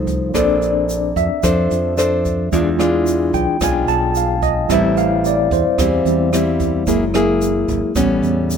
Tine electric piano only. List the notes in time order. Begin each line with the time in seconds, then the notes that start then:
Already playing: G3 A3 D#4
0.34 C4 D4 D5
1.17 E5
2.52 G#3 D4 F4
3.34 G5
3.64 G#5
3.88 A5
4.17 F5
4.43 D#5
4.68 G3 C4 E4 E5
4.98 F5
5.26 D5
5.53 C5
6.07 G3 C4 E4
6.87 G#3 A#3 E4
7.95 G3 B3 C#4